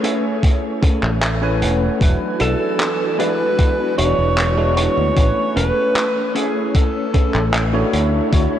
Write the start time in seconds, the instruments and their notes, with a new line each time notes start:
Already playing: tine electric piano A3 C#4 E4 B4 G#5, string machine A3 C#5
0.03 tine electric piano A3 C#4 E4 E5 G#5, clean electric guitar C#4 G#4 A4 B4, closed hi-hat
0.43 muted clean electric guitar stroke, kick, closed hi-hat
0.82 clean electric guitar C#4 G#4 A4 B4, kick, closed hi-hat
1.03 fingered electric bass A1, clap
1.22 clean electric guitar E5, clap, closed hi-hat
1.41 tine electric piano A3 C#4 E4 B4 G#5, clean electric guitar C#4 G#4 A4 B4
1.62 fingered electric bass E1, clean electric guitar F#5, closed hi-hat
1.81 muted clean electric guitar stroke
1.99 fingered electric bass E1, string machine E3 B3 D4 F#4 G#5, tine electric piano F#3 D4 E4 F#4 B4, kick, closed hi-hat
2.40 fingered electric bass B1, clean electric guitar E4 F#4 G#4 D5, alto saxophone A4, closed hi-hat
2.80 clap, closed hi-hat
3.18 tine electric piano G#3 D4 E4 F#4 D5, clean electric guitar E4 F#4 G#4 D5, alto saxophone B4, closed hi-hat
3.58 muted clean electric guitar stroke, kick, closed hi-hat
3.98 fingered electric bass E1, clean electric guitar E4 F#4 G#4 D5, alto saxophone C#5, closed hi-hat
4.18 fingered electric bass E1
4.38 clap, closed hi-hat
4.57 tine electric piano G#3 D4 E4 F#4 B4, clean electric guitar E4 F#4 G#4 D5
4.77 alto saxophone C#5, closed hi-hat
4.97 fingered electric bass D2, muted clean electric guitar stroke
5.15 fingered electric bass A1, tine electric piano A3 C#4 E4 B4 G#5, string machine A3 C#4, kick, closed hi-hat
5.56 fingered electric bass E1, clean electric guitar C#4 G#4 A4 B4, alto saxophone B4, closed hi-hat
5.96 clap, closed hi-hat
6.35 tine electric piano A3 C#4 E4 E5 G#5, clean electric guitar C#4 G#4 A4 B4, alto saxophone G#4, closed hi-hat
6.75 alto saxophone A4, muted clean electric guitar stroke, kick, closed hi-hat
7.14 clean electric guitar C#4 G#4 A4 B4, kick, closed hi-hat
7.34 fingered electric bass A1, clap
7.54 clap, closed hi-hat
7.73 tine electric piano A3 D4 E4 F#4 C#5, clean electric guitar C#4 G#4 A4 B4
7.93 fingered electric bass D2, string machine D3 E4 F#4 C#5, clean electric guitar D4 E4 F#4 C#5, closed hi-hat
8.31 fingered electric bass D2, tine electric piano A3 D4 E4 F#4 C#5, kick, closed hi-hat